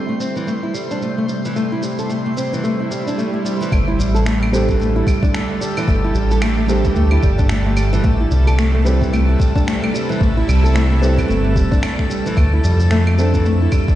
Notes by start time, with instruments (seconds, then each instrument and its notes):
Already playing: synth drone C3 G3 A3 G4 A4, felt piano G3 C4 E4 A4 C5, synth texture C5 C6
0.09 nylon-string guitar A3
0.20 nylon-string guitar C4, shaker
0.36 nylon-string guitar E3, shaker
0.47 nylon-string guitar A3, shaker
0.63 nylon-string guitar E4
0.74 nylon-string guitar G3, shaker
0.91 nylon-string guitar D4, shaker
1.02 nylon-string guitar A3, synth drone E4, shaker
1.18 nylon-string guitar A3
1.29 nylon-string guitar G3, shaker
1.45 nylon-string guitar E3, shaker
1.56 nylon-string guitar A3, shaker
1.72 nylon-string guitar E4
1.83 nylon-string guitar G3, shaker
1.99 nylon-string guitar A4, shaker
2.09 nylon-string guitar A3, shaker
2.26 nylon-string guitar A3
2.37 nylon-string guitar C4, shaker
2.53 nylon-string guitar E3, shaker
2.64 nylon-string guitar A3, swell, shaker
2.80 nylon-string guitar E4
2.91 nylon-string guitar G3, shaker
3.07 nylon-string guitar D4, shaker
3.18 nylon-string guitar A3, shaker
3.34 nylon-string guitar A3
3.45 nylon-string guitar G3, shaker
3.61 nylon-string guitar E3, shaker
3.72 analog synth bass G1, synth drone D3, nylon-string guitar A3, synth texture A4 A5, kick, claves, shaker
3.88 nylon-string guitar E4
3.99 analog synth bass A1, nylon-string guitar G3, shaker
4.15 nylon-string guitar A4, shaker
4.26 nylon-string guitar A3, finger snap, shaker
4.42 nylon-string guitar A3, claves
4.47 synth drone G4
4.52 felt piano G3 A3 D4 G4 A4, nylon-string guitar C4, shaker
4.56 synth drone A4
4.69 nylon-string guitar E3, kick, shaker
4.80 nylon-string guitar A3, shaker
4.96 synth drone A3, nylon-string guitar E4
5.07 nylon-string guitar G3, kick, claves, shaker
5.23 nylon-string guitar D4, kick, shaker
5.34 nylon-string guitar A3, finger snap, shaker
5.50 nylon-string guitar A3
5.61 nylon-string guitar G3, shaker
5.77 nylon-string guitar E3, claves, shaker
5.88 analog synth bass G1, nylon-string guitar A3, kick, shaker
6.04 nylon-string guitar E4
6.14 analog synth bass A1, nylon-string guitar G3, shaker
6.31 nylon-string guitar A4, shaker
6.42 nylon-string guitar A3, finger snap, claves, shaker
6.58 nylon-string guitar A3
6.67 felt piano G3 A3 D4 G4 A4, nylon-string guitar C4, shaker
6.84 nylon-string guitar E3, kick, shaker
6.96 analog synth bass D2, nylon-string guitar A3, shaker
7.11 nylon-string guitar E4, claves
7.23 analog synth bass G1, nylon-string guitar G3, kick, shaker
7.38 nylon-string guitar D4, kick, shaker
7.49 nylon-string guitar A3, finger snap, shaker
7.66 nylon-string guitar A3
7.77 nylon-string guitar G3, claves, shaker
7.93 nylon-string guitar E3, shaker
8.04 analog synth bass A1, synth drone C3, nylon-string guitar A3, kick, shaker
8.20 nylon-string guitar E4
8.31 analog synth bass C2, nylon-string guitar G3, shaker
8.47 nylon-string guitar A4, claves, shaker
8.58 nylon-string guitar A3, finger snap, shaker
8.75 nylon-string guitar A3
8.84 felt piano G3 C4 E4 B4, nylon-string guitar C4, shaker
8.88 felt piano A4
9.02 nylon-string guitar E3, kick, shaker
9.13 nylon-string guitar A3, claves, shaker
9.28 nylon-string guitar E4, synth drone E4
9.39 nylon-string guitar G3, kick, shaker
9.56 nylon-string guitar D4, kick, shaker
9.67 nylon-string guitar A3, finger snap, shaker
9.82 nylon-string guitar A3, claves
9.94 nylon-string guitar G3, shaker
10.09 nylon-string guitar E3, shaker
10.21 analog synth bass A1, nylon-string guitar A3, kick, shaker
10.37 nylon-string guitar E4
10.47 analog synth bass C2, nylon-string guitar G3, claves, shaker
10.64 nylon-string guitar A4, shaker
10.74 nylon-string guitar A3, finger snap, shaker
10.91 nylon-string guitar A3
11.01 felt piano G3 C4 E4 A4 B4, nylon-string guitar C4, shaker
11.17 nylon-string guitar E3, kick, claves, shaker
11.28 analog synth bass G1, nylon-string guitar A3, shaker
11.44 nylon-string guitar E4
11.56 analog synth bass E1, nylon-string guitar G3, kick, shaker
11.71 nylon-string guitar D4, kick, shaker
11.83 nylon-string guitar A3, finger snap, claves, shaker
11.99 nylon-string guitar A3, finger snap, kick
12.10 nylon-string guitar G3, shaker
12.26 nylon-string guitar E3, shaker
12.37 analog synth bass D2, synth drone D3, nylon-string guitar A3, kick, claves, shaker
12.53 nylon-string guitar E4
12.64 analog synth bass F2, nylon-string guitar G3, shaker
12.80 nylon-string guitar A4, shaker
12.91 nylon-string guitar A3, finger snap, shaker
13.07 nylon-string guitar A3, claves
13.18 felt piano A3 D4 A4, nylon-string guitar C4, shaker
13.34 nylon-string guitar E3, kick, shaker
13.45 nylon-string guitar A3, shaker
13.62 nylon-string guitar E4
13.72 nylon-string guitar G3, kick, claves, shaker
13.88 nylon-string guitar D4, kick, shaker